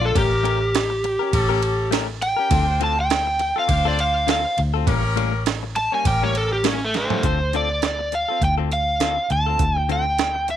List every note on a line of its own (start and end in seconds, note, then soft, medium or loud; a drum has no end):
0.00 0.11 A#1 loud
0.00 0.15 D4 medium
0.00 0.15 F4 medium
0.05 0.15 G#3 soft
0.05 0.17 A4 loud
0.14 1.16 A1 loud
0.14 0.32 A3 medium
0.14 0.74 C#4 medium
0.14 0.31 C#4 medium
0.14 0.75 G4 medium
0.14 0.31 G4 medium
0.14 1.90 G4 loud
0.14 0.75 A#4 loud
0.14 0.30 A#4 medium
0.14 kick loud
0.14 ride medium
0.31 muted clean electric guitar stroke soft
0.43 0.61 A3 medium
0.43 0.61 C#4 medium
0.43 0.60 G4 medium
0.43 0.59 A#4 medium
0.43 ride medium
0.61 muted clean electric guitar stroke soft
0.75 snare loud
0.75 ride medium
0.90 muted clean electric guitar stroke medium
1.04 muted clean electric guitar stroke soft
1.04 ride medium
1.19 1.32 C#4 soft
1.19 1.33 G4 soft
1.19 1.33 A#4 medium
1.32 2.33 A1 medium
1.32 1.92 C#4 loud
1.32 1.92 G4 loud
1.32 1.93 A4 loud
1.32 muted clean electric guitar stroke soft
1.32 kick medium
1.32 ride loud
1.49 1.61 A3 medium
1.49 1.61 C#4 medium
1.49 1.62 G4 medium
1.49 1.62 A#4 medium
1.62 muted clean electric guitar stroke soft
1.62 ride medium
1.91 2.08 A3 medium
1.91 2.08 C#4 medium
1.91 2.08 G4 medium
1.91 2.07 A#4 medium
1.91 snare loud
1.91 ride medium
2.08 muted clean electric guitar stroke medium
2.22 2.80 G5 loud
2.22 muted clean electric guitar stroke soft
2.22 ride medium
2.36 2.50 C#4 medium
2.36 2.51 G4 medium
2.36 2.51 A#4 medium
2.50 3.51 D2 loud
2.50 2.67 D3 medium
2.50 2.68 C4 medium
2.50 3.11 D4 medium
2.50 2.67 F4 medium
2.50 3.11 F4 medium
2.50 2.66 A4 loud
2.50 3.11 C5 medium
2.50 kick loud
2.50 ride loud
2.67 muted clean electric guitar stroke soft
2.80 2.97 D3 medium
2.80 2.98 C4 medium
2.80 2.97 F4 loud
2.80 2.96 A4 medium
2.80 2.98 A5 medium
2.80 ride medium
3.00 3.56 G5 loud
3.10 snare loud
3.10 ride medium
3.27 muted clean electric guitar stroke soft
3.39 muted clean electric guitar stroke soft
3.39 ride medium
3.56 3.69 C4 soft
3.56 3.69 F4 soft
3.56 3.69 A4 medium
3.56 3.87 F5 medium
3.67 4.44 D2 loud
3.67 4.27 D4 loud
3.67 4.28 F4 medium
3.67 4.28 C5 loud
3.67 muted clean electric guitar stroke soft
3.67 kick medium
3.67 ride medium
3.85 3.97 D3 medium
3.85 3.97 C4 medium
3.85 3.98 F4 medium
3.85 3.99 A4 medium
3.85 4.00 D5 medium
3.98 4.28 F5 loud
3.98 muted clean electric guitar stroke soft
3.98 ride medium
4.27 4.44 D3 medium
4.27 4.45 C4 medium
4.27 4.44 F4 medium
4.27 4.43 A4 medium
4.27 4.58 F5 medium
4.27 snare loud
4.27 ride medium
4.45 muted clean electric guitar stroke medium
4.58 4.83 D2 loud
4.58 muted clean electric guitar stroke soft
4.58 ride medium
4.74 4.88 C4 medium
4.74 4.88 F4 medium
4.74 4.87 A4 medium
4.86 5.87 A1 loud
4.86 5.04 A2 medium
4.86 5.04 G3 medium
4.86 5.03 A#3 medium
4.86 5.46 C#4 loud
4.86 5.03 C#4 medium
4.86 5.46 G4 medium
4.86 5.46 A#4 loud
4.86 kick loud
4.86 ride medium
5.04 muted clean electric guitar stroke soft
5.16 5.33 A2 loud
5.16 5.33 G3 medium
5.16 5.33 A#3 loud
5.16 5.32 C#4 medium
5.16 ride medium
5.33 muted clean electric guitar stroke medium
5.46 snare loud
5.46 ride medium
5.63 muted clean electric guitar stroke soft
5.76 5.92 A5 loud
5.76 muted clean electric guitar stroke soft
5.76 ride medium
5.92 6.06 G3 soft
5.92 6.06 A#3 medium
5.92 6.05 C#4 medium
5.92 6.06 G#5 medium
6.04 7.05 A1 medium
6.04 6.64 C#4 medium
6.04 6.64 G4 medium
6.04 6.65 A#4 loud
6.04 6.23 G5 loud
6.04 muted clean electric guitar stroke soft
6.04 kick medium
6.04 ride loud
6.22 6.34 A2 medium
6.22 6.35 G3 medium
6.22 6.35 A#3 medium
6.22 6.35 C#4 medium
6.22 6.36 C#5 medium
6.35 6.52 A4 medium
6.35 muted clean electric guitar stroke soft
6.35 ride medium
6.53 6.65 G4 medium
6.64 6.81 A2 medium
6.64 6.81 G3 medium
6.64 6.81 A#3 medium
6.64 6.80 C#4 medium
6.64 6.82 C#4 medium
6.64 snare loud
6.64 ride loud
6.81 6.96 A3 medium
6.81 muted clean electric guitar stroke soft
6.94 7.24 A3 loud
6.94 7.57 C5 medium
6.94 muted clean electric guitar stroke soft
6.94 snare medium
6.94 ride medium
7.10 7.25 G3 medium
7.10 7.24 A#3 medium
7.10 7.23 C#4 medium
7.10 floor tom medium
7.23 8.24 D2 medium
7.23 7.40 D3 medium
7.23 7.40 C4 medium
7.23 7.40 F4 medium
7.23 7.39 A4 medium
7.23 kick loud
7.23 closed hi-hat medium
7.40 muted clean electric guitar stroke soft
7.53 7.70 D3 medium
7.53 7.70 C4 medium
7.53 7.70 F4 medium
7.53 7.69 A4 medium
7.53 7.85 D5 medium
7.53 closed hi-hat medium
7.70 muted clean electric guitar stroke soft
7.82 snare loud
7.82 closed hi-hat medium
7.86 8.15 D5 medium
7.99 muted clean electric guitar stroke soft
8.12 8.41 F5 medium
8.12 muted clean electric guitar stroke soft
8.12 closed hi-hat medium
8.28 8.41 C4 soft
8.28 8.41 F4 soft
8.28 8.42 A4 soft
8.41 9.17 D2 medium
8.41 8.52 G5 loud
8.41 kick medium
8.41 closed hi-hat medium
8.58 8.70 D3 medium
8.58 8.71 C4 medium
8.58 8.71 F4 medium
8.58 8.71 A4 medium
8.71 9.32 F5 medium
8.71 muted clean electric guitar stroke soft
8.71 closed hi-hat medium
9.00 9.17 D3 medium
9.00 9.18 C4 medium
9.00 9.17 F4 medium
9.00 9.16 A4 medium
9.00 snare loud
9.00 closed hi-hat medium
9.17 muted clean electric guitar stroke soft
9.30 9.55 D2 medium
9.30 9.78 A5 loud
9.30 muted clean electric guitar stroke soft
9.30 closed hi-hat medium
9.46 9.65 C4 soft
9.46 9.64 F4 medium
9.46 9.63 A4 medium
9.59 10.57 D2 medium
9.59 kick loud
9.59 closed hi-hat medium
9.77 9.92 G5 loud
9.77 muted clean electric guitar stroke soft
9.89 10.06 D3 medium
9.89 10.06 C4 medium
9.89 10.05 F4 medium
9.89 10.04 A4 medium
9.89 10.51 G5 medium
9.89 closed hi-hat medium
10.05 muted clean electric guitar stroke soft
10.19 snare loud
10.19 closed hi-hat medium
10.35 muted clean electric guitar stroke soft
10.48 10.57 F5 medium
10.48 muted clean electric guitar stroke soft
10.48 closed hi-hat medium